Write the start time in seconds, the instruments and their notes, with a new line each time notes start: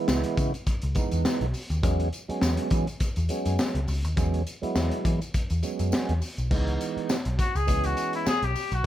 Already playing: tonewheel organ E3 G#3 B3 E4
0.08 picked electric bass C#2, snare, tambourine
0.24 closed hi-hat
0.37 picked electric bass C#3, kick, closed hi-hat, tambourine
0.54 closed hi-hat, tambourine
0.67 muted picked electric bass stroke, kick, closed hi-hat, tambourine
0.82 picked electric bass C#2, closed hi-hat
0.95 tonewheel organ E3 G#3 B3 D#4, kick, closed hi-hat, tambourine
1.11 picked electric bass E2, closed hi-hat, tambourine
1.25 muted picked electric bass stroke, snare, tambourine
1.41 picked electric bass B1, closed hi-hat
1.54 open hi-hat, tambourine
1.70 picked electric bass D#2, closed hi-hat, tambourine
1.83 picked electric bass E2, tonewheel organ F#3 G#3 B3 C#4, kick, closed hi-hat, tambourine
2.00 closed hi-hat
2.13 closed hi-hat, tambourine
2.28 tonewheel organ F#3 G#3 B3 C#4, muted picked electric bass stroke, closed hi-hat
2.41 picked electric bass E2, snare, tambourine
2.57 closed hi-hat
2.70 picked electric bass E3, kick, closed hi-hat, tambourine
2.87 closed hi-hat, tambourine
3.00 muted picked electric bass stroke, kick, closed hi-hat, tambourine
3.16 picked electric bass E2, closed hi-hat, tambourine
3.29 tonewheel organ F#3 G#3 B3 C#4, closed hi-hat, tambourine
3.45 picked electric bass F#2, closed hi-hat, tambourine
3.59 snare, tambourine
3.75 picked electric bass C#2, closed hi-hat
3.88 picked electric bass C#2, open hi-hat, tambourine
4.04 picked electric bass D#2, closed hi-hat, tambourine
4.16 picked electric bass E2, tonewheel organ F#3 G#3 B3 C#4, kick, closed hi-hat, tambourine
4.34 closed hi-hat
4.47 closed hi-hat, tambourine
4.62 tonewheel organ F#3 G#3 B3 E4, muted picked electric bass stroke, closed hi-hat
4.76 picked electric bass E2, snare, tambourine
4.91 closed hi-hat
5.05 picked electric bass E3, kick, closed hi-hat, tambourine
5.22 closed hi-hat, tambourine
5.34 muted picked electric bass stroke, kick, closed hi-hat, tambourine
5.50 picked electric bass E2, closed hi-hat, tambourine
5.62 tonewheel organ F#3 G#3 B3 C#4, closed hi-hat, tambourine
5.79 picked electric bass F#2, closed hi-hat, tambourine
5.92 muted picked electric bass stroke, snare, tambourine
6.09 picked electric bass E2, closed hi-hat
6.22 open hi-hat, tambourine
6.38 picked electric bass B1, closed hi-hat, tambourine
6.50 picked electric bass C#2, tonewheel organ E3 G#3 B3 D#4, kick, crash, tambourine
6.68 closed hi-hat
6.81 closed hi-hat, tambourine
6.97 muted picked electric bass stroke, closed hi-hat
7.09 snare, tambourine
7.25 picked electric bass B1, closed hi-hat
7.39 trumpet F#4, kick, closed hi-hat, tambourine
7.55 picked electric bass C#2, trumpet G#4, closed hi-hat, tambourine
7.67 picked electric bass C#2, tonewheel organ E3 G#3 B3 C#4, kick, closed hi-hat, tambourine
7.84 trumpet F#4, closed hi-hat, tambourine
7.97 closed hi-hat, tambourine
8.13 trumpet E4, closed hi-hat
8.26 trumpet G#4, muted picked electric bass stroke, snare, tambourine
8.43 picked electric bass B1, trumpet G4, closed hi-hat
8.55 open hi-hat, tambourine
8.72 picked electric bass B1, trumpet F#4, closed hi-hat, tambourine